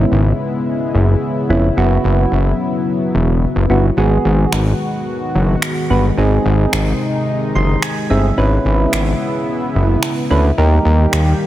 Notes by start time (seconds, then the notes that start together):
Already playing: C#3 G#3 B3 C#4 E4
0.12 G#1
0.94 F#1
1.49 F1 B3 C#4 E4
1.77 F#1 F#3 B3 E4 F#4
2.04 F#1
2.32 F#1
3.14 E1
3.56 F#1
3.70 G1 B3 E4 F#4
3.97 G#1 D#3 G#3 B3 F#4 G#4
4.25 G#1
4.52 G#1, finger snap
5.35 F#1
5.62 finger snap
5.90 G1 B3 F#4 B4
6.18 G#1 C3 C4 D#4 G#4
6.45 G#1
6.73 G#1, finger snap
7.55 F#1 C6
7.82 G#5, finger snap
8.10 G1 C4 D#4 G#4 E5
8.38 G#1 C#3 B3 C#4 E4 B4
8.65 G#1
8.93 G#1, finger snap
9.75 F#1
10.03 finger snap
10.30 D2 C#4 E4 B4
10.58 D#2 D#3 G3 A#3 D#4 G4 A#4
10.85 D#2
11.13 D#2, finger snap